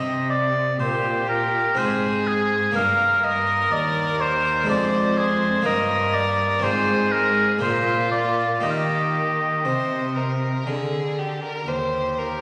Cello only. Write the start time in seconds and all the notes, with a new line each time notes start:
Already playing: C3
0.80 A#2
1.78 G#2
2.76 G2
3.71 D#2
4.68 F2
5.65 G2
6.63 G#2
7.62 A#2
8.63 D#3
9.65 C3
10.67 D3
11.68 D#2